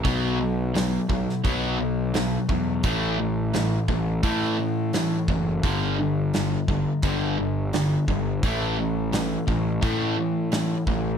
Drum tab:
HH |o---o---o---o---|o---o---o---o---|o---o---o---o---|o---o---o---o---|
SD |----o--o----o---|----o-------o---|----o-------o---|----o-------o---|
BD |o-----o-o-----o-|o-----o-o-----o-|o-----o-o-----o-|o-----o-o-----o-|